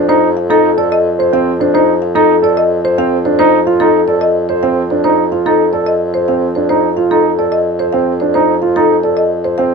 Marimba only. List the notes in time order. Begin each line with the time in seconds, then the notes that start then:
0.09 C5
0.37 F5
0.50 A4
0.78 D5
0.92 D#5
1.20 C5
1.34 F5
1.61 C5
1.75 C5
2.02 F5
2.16 A4
2.44 D5
2.57 D#5
2.85 C5
2.98 F5
3.25 C5
3.39 C5
3.67 F5
3.80 A4
4.08 D5
4.21 D#5
4.49 C5
4.63 F5
4.90 C5
5.04 C5
5.32 F5
5.46 A4
5.73 D5
5.86 D#5
6.14 C5
6.28 F5
6.55 C5
6.69 C5
6.97 F5
7.11 A4
7.39 D5
7.52 D#5
7.79 C5
7.93 F5
8.20 C5
8.34 C5
8.62 F5
8.76 A4
9.03 D5
9.17 D#5
9.44 C5
9.58 F5